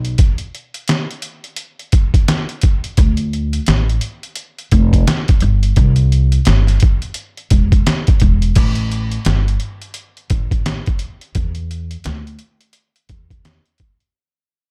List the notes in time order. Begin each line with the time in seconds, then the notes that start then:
Already playing: B1
0.05 closed hi-hat
0.18 kick, closed hi-hat
0.38 closed hi-hat
0.55 closed hi-hat
0.74 closed hi-hat
0.88 snare, closed hi-hat
1.11 closed hi-hat
1.22 closed hi-hat
1.44 closed hi-hat
1.56 closed hi-hat
1.79 closed hi-hat
1.92 kick, closed hi-hat
2.14 kick, closed hi-hat
2.28 snare, closed hi-hat
2.49 closed hi-hat
2.61 kick, closed hi-hat
2.84 closed hi-hat
2.97 D2, kick, closed hi-hat
3.17 closed hi-hat
3.33 closed hi-hat
3.53 closed hi-hat
3.66 A1, snare, closed hi-hat
3.89 closed hi-hat
4.01 closed hi-hat
4.23 closed hi-hat
4.36 closed hi-hat
4.59 closed hi-hat
4.71 F1, kick, closed hi-hat
4.93 kick, closed hi-hat
5.07 snare, closed hi-hat
5.28 kick, closed hi-hat
5.40 G1, closed hi-hat
5.63 closed hi-hat
5.76 C2, kick, closed hi-hat
5.96 closed hi-hat
6.12 closed hi-hat
6.32 closed hi-hat
6.45 G1, snare, closed hi-hat
6.67 snare, closed hi-hat
6.80 kick, closed hi-hat
7.02 closed hi-hat
7.14 closed hi-hat
7.37 closed hi-hat
7.50 E1, kick, closed hi-hat
7.72 kick, closed hi-hat
7.87 snare, closed hi-hat
8.07 kick, closed hi-hat
8.20 E1, kick, closed hi-hat
8.42 closed hi-hat
8.55 A1, kick, closed hi-hat, crash
8.75 closed hi-hat
8.92 closed hi-hat
9.11 closed hi-hat
9.25 G1, snare, closed hi-hat
9.48 closed hi-hat
9.60 closed hi-hat
9.82 closed hi-hat
9.94 closed hi-hat
10.17 closed hi-hat
10.30 A1, kick, closed hi-hat
10.51 kick, closed hi-hat
10.66 snare, closed hi-hat
10.86 kick, closed hi-hat
10.99 closed hi-hat
11.21 closed hi-hat
11.35 E2, kick, closed hi-hat
11.55 closed hi-hat
11.71 closed hi-hat
11.91 closed hi-hat
12.04 D2, snare, closed hi-hat
12.27 closed hi-hat
12.39 closed hi-hat
12.61 closed hi-hat
12.73 closed hi-hat
12.96 closed hi-hat
13.09 E2, kick, closed hi-hat
13.30 kick, closed hi-hat
13.45 snare, closed hi-hat
13.66 closed hi-hat
13.78 kick, closed hi-hat
14.00 closed hi-hat